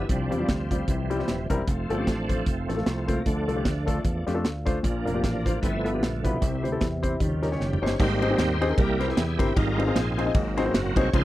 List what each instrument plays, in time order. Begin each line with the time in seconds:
Already playing: french horn section F3 G4, tonewheel organ E4
0.09 fingered electric bass C2, grand piano C3, tonewheel organ F3 G3 C4 D4, french horn section C5 F5, kick, closed hi-hat
0.30 fingered electric bass E2, grand piano G3 C4 F4 G4, closed hi-hat
0.40 grand piano G3 C4 F4 G4
0.49 fingered electric bass D2, tonewheel organ F3 G3 C4, kick, snare, closed hi-hat
0.71 grand piano G3 C4 F4 G4, kick, closed hi-hat
0.88 fingered electric bass C2, grand piano C3, tonewheel organ E3 G3 C4, french horn section E4 E5, kick, closed hi-hat
1.10 grand piano G3 C4 E4 G4, closed hi-hat
1.19 grand piano G3 C4 E4 G4, snare
1.28 fingered electric bass D#1, snare, closed hi-hat
1.50 fingered electric bass E1, grand piano G3 C4 E4 A#4, kick, closed hi-hat
1.68 fingered electric bass F1, tonewheel organ F3 A3 C4, french horn section F4 A4 F5, kick, closed hi-hat
1.89 fingered electric bass G1, tonewheel organ F3 A3 D4, grand piano A3 C4 F4 A4, closed hi-hat
1.98 grand piano A3 C4 F4 G4
2.07 fingered electric bass A1, kick, snare, closed hi-hat
2.28 grand piano A3 C4 F4 C5, kick, closed hi-hat
2.46 fingered electric bass F1, tonewheel organ F3 A3 C4, kick, closed hi-hat
2.68 fingered electric bass A1, grand piano A3 C4 F4 A4, tonewheel organ D4, snare, closed hi-hat
2.76 grand piano A3 C4 F4 A4, snare
2.86 fingered electric bass C2, tonewheel organ C4, snare, closed hi-hat
3.07 grand piano A3 C4 F4 C5, tonewheel organ A#3, kick, closed hi-hat
3.26 fingered electric bass D2, grand piano D3, tonewheel organ D3 F3 A3 D4, french horn section D5, kick, closed hi-hat
3.47 fingered electric bass C2, grand piano A3 D4 F4 A4, closed hi-hat
3.56 grand piano A3 D4 F4 G4
3.65 fingered electric bass D2, kick, snare, closed hi-hat
3.86 grand piano A3 D4 F4 A4, kick, closed hi-hat
4.05 fingered electric bass E2, tonewheel organ F3 A3 D4, kick, closed hi-hat
4.27 fingered electric bass F2, grand piano A3 D4 F4 G4, snare, closed hi-hat
4.34 grand piano A3 D4 F4 A4
4.45 fingered electric bass D2, snare, closed hi-hat
4.65 grand piano A3 D4 F4 C5, kick, closed hi-hat
4.83 fingered electric bass A#1, grand piano A#2, tonewheel organ F3 A#3 D4, french horn section A#4 D5 F5, kick, closed hi-hat
5.05 fingered electric bass F1, tonewheel organ F3 A#3 D4, grand piano A#3 D4 F4 A#4, closed hi-hat
5.14 grand piano A#3 D4 F4 G4
5.24 fingered electric bass A1, kick, snare, closed hi-hat
5.45 grand piano A#3 D4 F4 C5, kick, closed hi-hat
5.61 fingered electric bass G1, grand piano G2, tonewheel organ D3 F3 A3 B3 C4 E4, french horn section F4 A4 B4 E5, kick, closed hi-hat
5.84 grand piano B3 E4 F4 A4, tonewheel organ B3, closed hi-hat
5.93 grand piano B3 E4 F4 G4
6.02 fingered electric bass A#1, tonewheel organ A3, snare, closed hi-hat
6.16 tonewheel organ A3
6.24 fingered electric bass B1, tonewheel organ C3 G3, grand piano B3 E4 F4 B4, kick, closed hi-hat
6.40 fingered electric bass C2, grand piano C3, tonewheel organ G3 C4 E4, french horn section E4 G4 C5, kick, closed hi-hat
6.63 fingered electric bass D2, grand piano C4 E4 G4 C5, closed hi-hat
6.72 grand piano C4 E4 G4 A4
6.81 fingered electric bass E2, kick, snare, closed hi-hat
7.02 grand piano C4 E4 G4 C5, kick, closed hi-hat
7.20 fingered electric bass D#2, tonewheel organ C#3 F3 G3, grand piano D#3, french horn section D#4 A#4 C#5, kick, closed hi-hat
7.42 grand piano C#4 D#4 G4 A#4, snare, closed hi-hat
7.52 grand piano C#4 D#4 G4 C#5, snare
7.60 fingered electric bass F#1, tonewheel organ G4, snare
7.73 mid tom
7.82 fingered electric bass G1, grand piano C#4 D#4 G4 C5, tonewheel organ C#5
7.86 snare
7.99 fingered electric bass G#1, grand piano G#2, tonewheel organ G3 A#3 C4 D#4 G4 C5, kick, crash
8.21 grand piano C4 D#4 G4 G#4 C5, ride
8.30 grand piano C4 D#4 G4 G#4 C5
8.38 fingered electric bass D#2, snare, ride
8.61 grand piano C4 D#4 G4 G#4 C5, ride
8.70 grand piano C4 D#4 G4 G#4 A#4
8.78 fingered electric bass C2, grand piano C3, tonewheel organ G3 A#3 E4 G4 A#4, kick, ride
8.99 grand piano C4 E4 G4 A#4 C5, snare, ride
9.07 grand piano C4 E4 G4 A#4 C5, tonewheel organ E4 G#4, snare
9.17 fingered electric bass E2, snare, ride
9.38 fingered electric bass G1, grand piano C4 E4 G4 A#4 C5, tonewheel organ G4, kick, ride
9.56 fingered electric bass G#1, grand piano G#2, tonewheel organ G3 G#3 D#4 F4 A#4, kick, ride
9.78 grand piano C4 D#4 F4 G#4 C5, ride
9.87 grand piano C4 D#4 F4 G#4 C5
9.95 fingered electric bass A#1, tonewheel organ C4 D#4 G#4, snare, ride
10.17 grand piano C4 D#4 F4 G#4 C5, ride
10.26 grand piano C4 D#4 F4 G#4 D#5
10.34 fingered electric bass G#1, grand piano G#2, tonewheel organ F#3 A#3 C4, kick, ride
10.57 grand piano C4 D#4 F#4 G#4 C5, snare, ride
10.65 grand piano C4 D#4 F#4 G#4 C5
10.74 fingered electric bass F#1, tonewheel organ F#4, snare, ride
10.96 fingered electric bass C2, grand piano C4 D#4 F#4 G#4 C5, tonewheel organ C#5, kick, ride
11.13 fingered electric bass C#2, grand piano C#3, tonewheel organ F3 C4 D#4 F4 G#4 C5, kick, ride